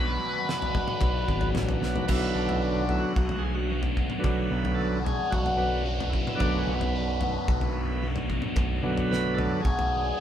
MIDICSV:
0, 0, Header, 1, 7, 480
1, 0, Start_track
1, 0, Key_signature, 2, "minor"
1, 0, Tempo, 540054
1, 1855, Time_signature, 4, 2, 24, 8
1, 9068, End_track
2, 0, Start_track
2, 0, Title_t, "Lead electric guitar"
2, 0, Program_c, 0, 29
2, 0, Note_on_c, 0, 71, 79
2, 1320, Note_off_c, 0, 71, 0
2, 9068, End_track
3, 0, Start_track
3, 0, Title_t, "Overdriven electric guitar"
3, 0, Program_c, 1, 29
3, 0, Note_on_c, 1, 47, 94
3, 0, Note_on_c, 1, 54, 96
3, 0, Note_on_c, 1, 59, 103
3, 0, Note_on_c, 1, 62, 104
3, 0, Note_on_c, 1, 66, 97
3, 1837, Note_off_c, 1, 47, 0
3, 1846, Note_off_c, 1, 54, 0
3, 1847, Note_off_c, 1, 59, 0
3, 1851, Note_on_c, 1, 47, 80
3, 1852, Note_off_c, 1, 62, 0
3, 1855, Note_off_c, 1, 66, 0
3, 1862, Note_on_c, 1, 54, 94
3, 1866, Note_on_c, 1, 59, 93
3, 1874, Note_on_c, 1, 62, 80
3, 1880, Note_on_c, 1, 66, 100
3, 2325, Note_off_c, 1, 54, 0
3, 2329, Note_on_c, 1, 54, 69
3, 2333, Note_off_c, 1, 59, 0
3, 2336, Note_on_c, 1, 59, 73
3, 2342, Note_off_c, 1, 62, 0
3, 2346, Note_on_c, 1, 62, 76
3, 2350, Note_off_c, 1, 66, 0
3, 2353, Note_on_c, 1, 66, 65
3, 2574, Note_off_c, 1, 66, 0
3, 2578, Note_on_c, 1, 66, 67
3, 2590, Note_off_c, 1, 62, 0
3, 2594, Note_on_c, 1, 62, 70
3, 2600, Note_off_c, 1, 59, 0
3, 2604, Note_on_c, 1, 59, 59
3, 2803, Note_off_c, 1, 54, 0
3, 2807, Note_on_c, 1, 54, 73
3, 2813, Note_off_c, 1, 59, 0
3, 2817, Note_on_c, 1, 59, 68
3, 2825, Note_off_c, 1, 62, 0
3, 2829, Note_on_c, 1, 62, 70
3, 2832, Note_off_c, 1, 66, 0
3, 2836, Note_on_c, 1, 66, 69
3, 3280, Note_off_c, 1, 47, 0
3, 3284, Note_on_c, 1, 47, 92
3, 3289, Note_off_c, 1, 54, 0
3, 3292, Note_on_c, 1, 54, 79
3, 3295, Note_off_c, 1, 59, 0
3, 3298, Note_on_c, 1, 59, 81
3, 3305, Note_off_c, 1, 62, 0
3, 3306, Note_off_c, 1, 66, 0
3, 3308, Note_on_c, 1, 62, 88
3, 3309, Note_on_c, 1, 66, 104
3, 3528, Note_off_c, 1, 66, 0
3, 3532, Note_on_c, 1, 66, 75
3, 3542, Note_off_c, 1, 62, 0
3, 3546, Note_on_c, 1, 62, 68
3, 3550, Note_off_c, 1, 59, 0
3, 3553, Note_on_c, 1, 59, 53
3, 3769, Note_off_c, 1, 47, 0
3, 3773, Note_on_c, 1, 47, 100
3, 3781, Note_off_c, 1, 54, 0
3, 3782, Note_off_c, 1, 59, 0
3, 3784, Note_on_c, 1, 54, 95
3, 3786, Note_on_c, 1, 59, 91
3, 3795, Note_off_c, 1, 62, 0
3, 3798, Note_off_c, 1, 66, 0
3, 3799, Note_on_c, 1, 62, 89
3, 3801, Note_on_c, 1, 66, 111
3, 4244, Note_off_c, 1, 54, 0
3, 4247, Note_on_c, 1, 54, 65
3, 4254, Note_off_c, 1, 59, 0
3, 4257, Note_on_c, 1, 59, 66
3, 4264, Note_off_c, 1, 62, 0
3, 4267, Note_on_c, 1, 62, 66
3, 4271, Note_off_c, 1, 66, 0
3, 4274, Note_on_c, 1, 66, 71
3, 4482, Note_off_c, 1, 66, 0
3, 4486, Note_on_c, 1, 66, 70
3, 4496, Note_off_c, 1, 62, 0
3, 4500, Note_on_c, 1, 62, 68
3, 4504, Note_off_c, 1, 59, 0
3, 4508, Note_on_c, 1, 59, 60
3, 4716, Note_off_c, 1, 54, 0
3, 4720, Note_on_c, 1, 54, 66
3, 4727, Note_off_c, 1, 59, 0
3, 4731, Note_on_c, 1, 59, 68
3, 4736, Note_off_c, 1, 62, 0
3, 4739, Note_on_c, 1, 62, 83
3, 4741, Note_off_c, 1, 66, 0
3, 4744, Note_on_c, 1, 66, 71
3, 5199, Note_off_c, 1, 47, 0
3, 5203, Note_off_c, 1, 54, 0
3, 5203, Note_on_c, 1, 47, 83
3, 5207, Note_on_c, 1, 54, 82
3, 5216, Note_off_c, 1, 59, 0
3, 5219, Note_on_c, 1, 59, 81
3, 5221, Note_off_c, 1, 62, 0
3, 5225, Note_on_c, 1, 62, 85
3, 5227, Note_off_c, 1, 66, 0
3, 5231, Note_on_c, 1, 66, 89
3, 5444, Note_off_c, 1, 66, 0
3, 5447, Note_on_c, 1, 66, 67
3, 5460, Note_off_c, 1, 62, 0
3, 5464, Note_on_c, 1, 62, 60
3, 5469, Note_off_c, 1, 59, 0
3, 5472, Note_on_c, 1, 59, 61
3, 5680, Note_off_c, 1, 47, 0
3, 5683, Note_on_c, 1, 47, 87
3, 5690, Note_off_c, 1, 54, 0
3, 5693, Note_off_c, 1, 59, 0
3, 5694, Note_on_c, 1, 54, 81
3, 5697, Note_on_c, 1, 59, 95
3, 5705, Note_off_c, 1, 62, 0
3, 5706, Note_off_c, 1, 66, 0
3, 5708, Note_on_c, 1, 62, 95
3, 5710, Note_on_c, 1, 66, 99
3, 6173, Note_off_c, 1, 54, 0
3, 6177, Note_on_c, 1, 54, 69
3, 6181, Note_off_c, 1, 59, 0
3, 6185, Note_on_c, 1, 59, 68
3, 6194, Note_off_c, 1, 62, 0
3, 6197, Note_on_c, 1, 62, 71
3, 6200, Note_off_c, 1, 66, 0
3, 6203, Note_on_c, 1, 66, 79
3, 6406, Note_off_c, 1, 66, 0
3, 6409, Note_on_c, 1, 66, 77
3, 6423, Note_off_c, 1, 62, 0
3, 6426, Note_on_c, 1, 62, 61
3, 6431, Note_off_c, 1, 59, 0
3, 6435, Note_on_c, 1, 59, 56
3, 6652, Note_off_c, 1, 54, 0
3, 6656, Note_on_c, 1, 54, 75
3, 6657, Note_off_c, 1, 59, 0
3, 6661, Note_on_c, 1, 59, 73
3, 6670, Note_off_c, 1, 62, 0
3, 6673, Note_on_c, 1, 62, 72
3, 6676, Note_off_c, 1, 66, 0
3, 6680, Note_on_c, 1, 66, 67
3, 7126, Note_off_c, 1, 47, 0
3, 7130, Note_on_c, 1, 47, 80
3, 7138, Note_off_c, 1, 54, 0
3, 7141, Note_off_c, 1, 59, 0
3, 7141, Note_on_c, 1, 54, 85
3, 7144, Note_on_c, 1, 59, 84
3, 7150, Note_off_c, 1, 66, 0
3, 7153, Note_off_c, 1, 62, 0
3, 7154, Note_on_c, 1, 66, 97
3, 7157, Note_on_c, 1, 62, 90
3, 7369, Note_off_c, 1, 66, 0
3, 7373, Note_on_c, 1, 66, 70
3, 7383, Note_off_c, 1, 62, 0
3, 7386, Note_on_c, 1, 62, 58
3, 7396, Note_off_c, 1, 59, 0
3, 7400, Note_on_c, 1, 59, 52
3, 7606, Note_off_c, 1, 47, 0
3, 7609, Note_on_c, 1, 47, 85
3, 7613, Note_off_c, 1, 54, 0
3, 7616, Note_on_c, 1, 54, 102
3, 7624, Note_off_c, 1, 59, 0
3, 7628, Note_on_c, 1, 59, 91
3, 7629, Note_off_c, 1, 62, 0
3, 7633, Note_off_c, 1, 66, 0
3, 7633, Note_on_c, 1, 62, 87
3, 7637, Note_on_c, 1, 66, 94
3, 8085, Note_off_c, 1, 54, 0
3, 8089, Note_on_c, 1, 54, 68
3, 8096, Note_off_c, 1, 59, 0
3, 8100, Note_on_c, 1, 59, 73
3, 8108, Note_off_c, 1, 62, 0
3, 8111, Note_on_c, 1, 62, 78
3, 8115, Note_off_c, 1, 66, 0
3, 8118, Note_on_c, 1, 66, 80
3, 8326, Note_off_c, 1, 66, 0
3, 8329, Note_on_c, 1, 66, 75
3, 8342, Note_off_c, 1, 62, 0
3, 8346, Note_on_c, 1, 62, 64
3, 8354, Note_off_c, 1, 59, 0
3, 8357, Note_on_c, 1, 59, 54
3, 8569, Note_off_c, 1, 54, 0
3, 8572, Note_on_c, 1, 54, 71
3, 8577, Note_off_c, 1, 59, 0
3, 8580, Note_on_c, 1, 59, 68
3, 8587, Note_off_c, 1, 62, 0
3, 8591, Note_on_c, 1, 62, 77
3, 8593, Note_off_c, 1, 66, 0
3, 8597, Note_on_c, 1, 66, 78
3, 9046, Note_off_c, 1, 47, 0
3, 9054, Note_off_c, 1, 54, 0
3, 9062, Note_off_c, 1, 59, 0
3, 9068, Note_off_c, 1, 62, 0
3, 9068, Note_off_c, 1, 66, 0
3, 9068, End_track
4, 0, Start_track
4, 0, Title_t, "Tonewheel organ"
4, 0, Program_c, 2, 16
4, 0, Note_on_c, 2, 54, 75
4, 0, Note_on_c, 2, 59, 73
4, 0, Note_on_c, 2, 62, 70
4, 0, Note_on_c, 2, 66, 61
4, 0, Note_on_c, 2, 71, 87
4, 1819, Note_off_c, 2, 54, 0
4, 1819, Note_off_c, 2, 59, 0
4, 1823, Note_off_c, 2, 66, 0
4, 1823, Note_off_c, 2, 71, 0
4, 1824, Note_off_c, 2, 62, 0
4, 1824, Note_on_c, 2, 50, 59
4, 1835, Note_on_c, 2, 54, 57
4, 1840, Note_on_c, 2, 59, 60
4, 1859, Note_on_c, 2, 64, 87
4, 2087, Note_on_c, 2, 62, 79
4, 2104, Note_off_c, 2, 64, 0
4, 2207, Note_on_c, 2, 64, 86
4, 2214, Note_off_c, 2, 62, 0
4, 2313, Note_on_c, 2, 62, 78
4, 2334, Note_off_c, 2, 64, 0
4, 2523, Note_off_c, 2, 50, 0
4, 2529, Note_off_c, 2, 54, 0
4, 2531, Note_off_c, 2, 59, 0
4, 2561, Note_on_c, 2, 50, 44
4, 2562, Note_on_c, 2, 54, 42
4, 2564, Note_on_c, 2, 59, 52
4, 2571, Note_off_c, 2, 62, 0
4, 2581, Note_on_c, 2, 64, 88
4, 2668, Note_on_c, 2, 66, 73
4, 2701, Note_off_c, 2, 64, 0
4, 2783, Note_off_c, 2, 50, 0
4, 2783, Note_off_c, 2, 54, 0
4, 2784, Note_off_c, 2, 59, 0
4, 3008, Note_on_c, 2, 68, 88
4, 3052, Note_off_c, 2, 66, 0
4, 3151, Note_on_c, 2, 66, 73
4, 3155, Note_off_c, 2, 68, 0
4, 3385, Note_off_c, 2, 66, 0
4, 3720, Note_on_c, 2, 50, 62
4, 3730, Note_on_c, 2, 59, 65
4, 3734, Note_on_c, 2, 54, 58
4, 4218, Note_on_c, 2, 69, 100
4, 4432, Note_off_c, 2, 50, 0
4, 4437, Note_off_c, 2, 59, 0
4, 4439, Note_off_c, 2, 54, 0
4, 4483, Note_on_c, 2, 68, 92
4, 4484, Note_off_c, 2, 69, 0
4, 4715, Note_on_c, 2, 66, 95
4, 4736, Note_off_c, 2, 68, 0
4, 4954, Note_on_c, 2, 50, 45
4, 4957, Note_on_c, 2, 59, 46
4, 4958, Note_on_c, 2, 54, 42
4, 5179, Note_off_c, 2, 50, 0
4, 5181, Note_off_c, 2, 59, 0
4, 5182, Note_off_c, 2, 54, 0
4, 5420, Note_on_c, 2, 64, 78
4, 5467, Note_off_c, 2, 66, 0
4, 5645, Note_on_c, 2, 54, 54
4, 5651, Note_on_c, 2, 50, 60
4, 5657, Note_on_c, 2, 59, 68
4, 5666, Note_on_c, 2, 62, 102
4, 5685, Note_off_c, 2, 64, 0
4, 5829, Note_on_c, 2, 61, 83
4, 5846, Note_off_c, 2, 62, 0
4, 5980, Note_off_c, 2, 59, 0
4, 5988, Note_off_c, 2, 54, 0
4, 5990, Note_off_c, 2, 61, 0
4, 5991, Note_on_c, 2, 59, 72
4, 5992, Note_off_c, 2, 50, 0
4, 7169, Note_off_c, 2, 59, 0
4, 7847, Note_on_c, 2, 50, 51
4, 7851, Note_on_c, 2, 59, 59
4, 7855, Note_on_c, 2, 54, 53
4, 8098, Note_on_c, 2, 71, 103
4, 8304, Note_on_c, 2, 69, 98
4, 8346, Note_off_c, 2, 71, 0
4, 8538, Note_off_c, 2, 50, 0
4, 8539, Note_on_c, 2, 68, 97
4, 8540, Note_off_c, 2, 59, 0
4, 8542, Note_off_c, 2, 54, 0
4, 8570, Note_off_c, 2, 69, 0
4, 9068, Note_off_c, 2, 68, 0
4, 9068, End_track
5, 0, Start_track
5, 0, Title_t, "Synth drone"
5, 0, Program_c, 3, 95
5, 1855, Note_on_c, 3, 35, 70
5, 1858, Note_on_c, 3, 42, 69
5, 9068, Note_off_c, 3, 35, 0
5, 9068, Note_off_c, 3, 42, 0
5, 9068, End_track
6, 0, Start_track
6, 0, Title_t, "Picked electric bass"
6, 0, Program_c, 4, 34
6, 0, Note_on_c, 4, 35, 89
6, 143, Note_off_c, 4, 35, 0
6, 898, Note_on_c, 4, 35, 73
6, 1099, Note_off_c, 4, 35, 0
6, 1139, Note_on_c, 4, 32, 85
6, 1354, Note_off_c, 4, 32, 0
6, 1370, Note_on_c, 4, 33, 78
6, 1588, Note_off_c, 4, 33, 0
6, 1607, Note_on_c, 4, 35, 81
6, 1826, Note_off_c, 4, 35, 0
6, 1855, Note_on_c, 4, 35, 99
6, 2057, Note_off_c, 4, 35, 0
6, 2085, Note_on_c, 4, 35, 89
6, 2695, Note_off_c, 4, 35, 0
6, 2810, Note_on_c, 4, 35, 88
6, 3620, Note_off_c, 4, 35, 0
6, 3769, Note_on_c, 4, 35, 88
6, 3973, Note_off_c, 4, 35, 0
6, 4007, Note_on_c, 4, 35, 90
6, 4616, Note_off_c, 4, 35, 0
6, 4735, Note_on_c, 4, 35, 86
6, 5544, Note_off_c, 4, 35, 0
6, 5692, Note_on_c, 4, 35, 98
6, 5895, Note_off_c, 4, 35, 0
6, 5929, Note_on_c, 4, 35, 89
6, 6539, Note_off_c, 4, 35, 0
6, 6646, Note_on_c, 4, 35, 84
6, 7460, Note_off_c, 4, 35, 0
6, 7608, Note_on_c, 4, 35, 88
6, 7815, Note_off_c, 4, 35, 0
6, 7844, Note_on_c, 4, 35, 97
6, 8457, Note_off_c, 4, 35, 0
6, 8573, Note_on_c, 4, 35, 89
6, 8981, Note_off_c, 4, 35, 0
6, 9068, End_track
7, 0, Start_track
7, 0, Title_t, "Drums"
7, 436, Note_on_c, 9, 38, 81
7, 525, Note_off_c, 9, 38, 0
7, 553, Note_on_c, 9, 43, 76
7, 642, Note_off_c, 9, 43, 0
7, 664, Note_on_c, 9, 36, 74
7, 665, Note_on_c, 9, 43, 94
7, 753, Note_off_c, 9, 36, 0
7, 754, Note_off_c, 9, 43, 0
7, 778, Note_on_c, 9, 47, 77
7, 867, Note_off_c, 9, 47, 0
7, 895, Note_on_c, 9, 43, 89
7, 895, Note_on_c, 9, 47, 78
7, 901, Note_on_c, 9, 36, 104
7, 983, Note_off_c, 9, 43, 0
7, 983, Note_off_c, 9, 47, 0
7, 990, Note_off_c, 9, 36, 0
7, 1142, Note_on_c, 9, 36, 72
7, 1230, Note_off_c, 9, 36, 0
7, 1252, Note_on_c, 9, 43, 81
7, 1341, Note_off_c, 9, 43, 0
7, 1376, Note_on_c, 9, 43, 91
7, 1386, Note_on_c, 9, 38, 85
7, 1465, Note_off_c, 9, 43, 0
7, 1475, Note_off_c, 9, 38, 0
7, 1498, Note_on_c, 9, 43, 92
7, 1498, Note_on_c, 9, 47, 78
7, 1587, Note_off_c, 9, 43, 0
7, 1587, Note_off_c, 9, 47, 0
7, 1626, Note_on_c, 9, 38, 59
7, 1715, Note_off_c, 9, 38, 0
7, 1739, Note_on_c, 9, 43, 93
7, 1828, Note_off_c, 9, 43, 0
7, 1853, Note_on_c, 9, 43, 81
7, 1853, Note_on_c, 9, 49, 113
7, 1858, Note_on_c, 9, 36, 101
7, 1941, Note_off_c, 9, 43, 0
7, 1941, Note_off_c, 9, 49, 0
7, 1947, Note_off_c, 9, 36, 0
7, 2213, Note_on_c, 9, 43, 83
7, 2302, Note_off_c, 9, 43, 0
7, 2568, Note_on_c, 9, 43, 78
7, 2657, Note_off_c, 9, 43, 0
7, 2812, Note_on_c, 9, 36, 93
7, 2901, Note_off_c, 9, 36, 0
7, 2924, Note_on_c, 9, 43, 78
7, 3013, Note_off_c, 9, 43, 0
7, 3402, Note_on_c, 9, 43, 77
7, 3490, Note_off_c, 9, 43, 0
7, 3528, Note_on_c, 9, 36, 69
7, 3617, Note_off_c, 9, 36, 0
7, 3641, Note_on_c, 9, 47, 70
7, 3730, Note_off_c, 9, 47, 0
7, 3767, Note_on_c, 9, 43, 90
7, 3770, Note_on_c, 9, 36, 113
7, 3856, Note_off_c, 9, 43, 0
7, 3859, Note_off_c, 9, 36, 0
7, 4132, Note_on_c, 9, 43, 75
7, 4221, Note_off_c, 9, 43, 0
7, 4501, Note_on_c, 9, 43, 89
7, 4590, Note_off_c, 9, 43, 0
7, 4733, Note_on_c, 9, 36, 99
7, 4822, Note_off_c, 9, 36, 0
7, 4851, Note_on_c, 9, 43, 70
7, 4940, Note_off_c, 9, 43, 0
7, 5337, Note_on_c, 9, 43, 89
7, 5426, Note_off_c, 9, 43, 0
7, 5453, Note_on_c, 9, 36, 61
7, 5541, Note_off_c, 9, 36, 0
7, 5575, Note_on_c, 9, 47, 81
7, 5664, Note_off_c, 9, 47, 0
7, 5689, Note_on_c, 9, 43, 91
7, 5692, Note_on_c, 9, 36, 106
7, 5778, Note_off_c, 9, 43, 0
7, 5781, Note_off_c, 9, 36, 0
7, 6053, Note_on_c, 9, 43, 83
7, 6142, Note_off_c, 9, 43, 0
7, 6405, Note_on_c, 9, 43, 91
7, 6494, Note_off_c, 9, 43, 0
7, 6651, Note_on_c, 9, 36, 106
7, 6740, Note_off_c, 9, 36, 0
7, 6767, Note_on_c, 9, 43, 76
7, 6855, Note_off_c, 9, 43, 0
7, 7249, Note_on_c, 9, 43, 81
7, 7338, Note_off_c, 9, 43, 0
7, 7374, Note_on_c, 9, 36, 69
7, 7463, Note_off_c, 9, 36, 0
7, 7482, Note_on_c, 9, 47, 80
7, 7571, Note_off_c, 9, 47, 0
7, 7608, Note_on_c, 9, 43, 82
7, 7612, Note_on_c, 9, 36, 111
7, 7697, Note_off_c, 9, 43, 0
7, 7701, Note_off_c, 9, 36, 0
7, 7977, Note_on_c, 9, 43, 80
7, 8066, Note_off_c, 9, 43, 0
7, 8112, Note_on_c, 9, 38, 69
7, 8201, Note_off_c, 9, 38, 0
7, 8341, Note_on_c, 9, 43, 84
7, 8341, Note_on_c, 9, 47, 80
7, 8430, Note_off_c, 9, 43, 0
7, 8430, Note_off_c, 9, 47, 0
7, 8576, Note_on_c, 9, 36, 97
7, 8665, Note_off_c, 9, 36, 0
7, 8699, Note_on_c, 9, 43, 83
7, 8788, Note_off_c, 9, 43, 0
7, 9068, End_track
0, 0, End_of_file